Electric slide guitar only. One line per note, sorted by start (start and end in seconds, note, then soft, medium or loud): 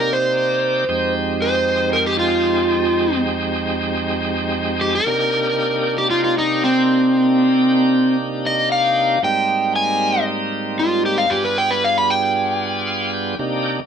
0.00 0.11 A#4 medium
0.13 1.13 C5 medium
1.42 1.92 C5 medium
1.93 2.06 A#4 medium
2.06 2.19 G4 medium
2.19 3.20 F4 medium
4.81 4.93 G4 medium
4.95 5.95 A#4 medium
5.98 6.10 G4 medium
6.10 6.22 F4 medium
6.24 6.36 F4 medium
6.38 6.62 D#4 medium
6.64 8.15 C4 medium
8.46 8.70 D#5 medium
8.72 9.21 F5 medium
9.24 9.74 G5 medium
9.76 10.25 G#5 loud
10.79 11.04 F4 medium
11.06 11.18 G4 medium
11.18 11.30 F5 medium
11.30 11.43 G4 medium
11.45 11.56 B4 medium
11.58 11.70 G5 medium
11.71 11.83 B4 medium
11.84 11.96 F5 medium
11.98 12.09 B5 medium
12.10 13.11 G5 medium